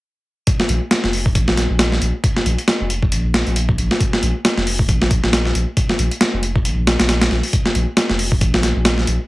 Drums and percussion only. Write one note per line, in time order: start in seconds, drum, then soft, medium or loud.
0.47 kick loud
0.47 closed hi-hat medium
0.60 snare medium
0.69 closed hi-hat medium
0.91 snare loud
0.91 closed hi-hat medium
1.04 snare soft
1.13 open hi-hat medium
1.26 kick medium
1.35 kick loud
1.35 closed hi-hat medium
1.48 snare medium
1.57 snare soft
1.57 closed hi-hat medium
1.79 snare loud
1.79 closed hi-hat medium
1.92 snare soft
2.02 closed hi-hat medium
2.24 kick loud
2.24 closed hi-hat medium
2.37 snare soft
2.46 closed hi-hat medium
2.58 closed hi-hat soft
2.68 snare loud
2.68 closed hi-hat medium
2.90 closed hi-hat medium
3.03 kick medium
3.12 closed hi-hat medium
3.34 snare loud
3.34 closed hi-hat medium
3.47 closed hi-hat soft
3.56 closed hi-hat medium
3.69 kick loud
3.78 closed hi-hat medium
3.91 snare medium
4.00 kick loud
4.00 closed hi-hat medium
4.13 snare medium
4.23 closed hi-hat medium
4.45 snare loud
4.45 closed hi-hat medium
4.58 snare soft
4.67 open hi-hat medium
4.79 kick medium
4.89 kick loud
4.89 closed hi-hat medium
5.02 snare medium
5.11 kick medium
5.11 closed hi-hat medium
5.24 snare soft
5.33 snare loud
5.33 closed hi-hat medium
5.45 snare soft
5.55 closed hi-hat medium
5.77 kick loud
5.77 closed hi-hat medium
5.89 snare soft
5.99 closed hi-hat medium
6.11 closed hi-hat soft
6.21 snare loud
6.21 closed hi-hat medium
6.43 closed hi-hat medium
6.56 kick medium
6.65 closed hi-hat medium
6.87 snare loud
6.87 closed hi-hat medium
7.00 snare loud
7.00 closed hi-hat medium
7.09 snare loud
7.09 closed hi-hat medium
7.21 snare loud
7.21 closed hi-hat medium
7.31 snare soft
7.43 open hi-hat medium
7.53 kick loud
7.53 closed hi-hat medium
7.66 snare medium
7.75 closed hi-hat medium
7.97 snare loud
7.97 closed hi-hat medium
8.10 snare medium
8.19 open hi-hat medium
8.32 kick medium
8.41 kick loud
8.41 closed hi-hat medium
8.54 snare medium
8.63 snare soft
8.63 closed hi-hat medium
8.85 snare loud
8.85 closed hi-hat medium
8.98 snare soft
9.07 closed hi-hat medium